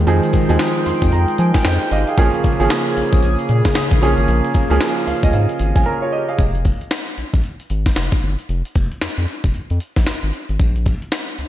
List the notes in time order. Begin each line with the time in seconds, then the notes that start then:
Already playing: D#3 F3 G#3 C4 D#4 G4 G#4
0.07 F2 F3 C4 D#4 G#4 G5, closed hi-hat, tambourine
0.23 closed hi-hat
0.33 kick, closed hi-hat, tambourine
0.49 D#2 F3 C4 D#4 G#4, closed hi-hat
0.59 F3 C4 D#4 G#4, snare, clap, closed hi-hat, tambourine
0.76 closed hi-hat
0.86 F2 C6, open hi-hat
1.02 F2, kick, closed hi-hat
1.12 F2 A#5, closed hi-hat, tambourine
1.28 closed hi-hat
1.38 F3 G#5, closed hi-hat, tambourine
1.54 kick, snare, closed hi-hat
1.65 F2 D#4 C5 G5, snare, clap, closed hi-hat, tambourine
1.81 closed hi-hat
1.91 G#1 G4 D#5 F5, open hi-hat, tambourine
2.07 G#4 F5, closed hi-hat
2.17 A#1 C#3 F3 A#3 C#4 G#4, kick, closed hi-hat, tambourine
2.34 closed hi-hat
2.44 kick, closed hi-hat, tambourine
2.60 G#1 F3 A#3 C#4 G#4, closed hi-hat
2.70 F3 A#3 C#4 G#4, snare, clap, closed hi-hat, tambourine
2.87 closed hi-hat
2.97 A#1, open hi-hat
3.13 A#1, kick, closed hi-hat
3.23 A#1, closed hi-hat, tambourine
3.39 closed hi-hat
3.49 A#2, closed hi-hat, tambourine
3.65 kick, snare, closed hi-hat
3.75 snare, clap, closed hi-hat, tambourine
3.91 A#1, kick, closed hi-hat
4.02 A#1 F3 A#3 C#4 G#4, open hi-hat, tambourine
4.18 G#1, closed hi-hat
4.28 A#1, closed hi-hat, tambourine
4.44 closed hi-hat
4.54 kick, closed hi-hat, tambourine
4.70 C#2 F3 A#3 C#4 G#4, closed hi-hat
4.80 F3 A#3 C#4 G#4, snare, clap, closed hi-hat, tambourine
4.97 closed hi-hat
5.07 C#2 F5, open hi-hat
5.23 C#2 D#5, kick, closed hi-hat
5.33 G#2 F5, closed hi-hat, tambourine
5.49 closed hi-hat
5.59 G#1, closed hi-hat, tambourine
5.76 A#1 G#5, kick, closed hi-hat
5.86 C#4 A#4 A#5
6.02 F4 C#5
6.12 G4 D#5
6.29 G#4 F5
6.39 F1, kick, closed hi-hat
6.55 closed hi-hat
6.65 kick, closed hi-hat
6.81 closed hi-hat
6.91 snare, clap, closed hi-hat
7.07 closed hi-hat
7.18 A#1, closed hi-hat
7.34 A#1, kick, closed hi-hat
7.44 closed hi-hat
7.60 closed hi-hat
7.70 G#1, closed hi-hat
7.86 kick, snare, closed hi-hat
7.96 F1, snare, clap, closed hi-hat
8.12 kick, closed hi-hat
8.23 G1, closed hi-hat
8.39 closed hi-hat
8.49 F1, closed hi-hat
8.65 closed hi-hat
8.75 F1, kick, closed hi-hat
8.92 closed hi-hat
9.01 F2, snare, clap, closed hi-hat
9.18 F2, closed hi-hat
9.28 closed hi-hat
9.44 F1, kick, closed hi-hat
9.54 F2, closed hi-hat
9.70 F2, closed hi-hat
9.80 closed hi-hat
9.96 A#1, kick, snare, closed hi-hat
10.07 G#1, snare, clap, closed hi-hat
10.23 G#1, closed hi-hat
10.33 closed hi-hat
10.49 G#1, closed hi-hat
10.59 A#1, kick, closed hi-hat
10.76 closed hi-hat
10.86 kick, closed hi-hat
11.02 closed hi-hat
11.12 snare, clap, closed hi-hat
11.28 closed hi-hat
11.38 C#2, closed hi-hat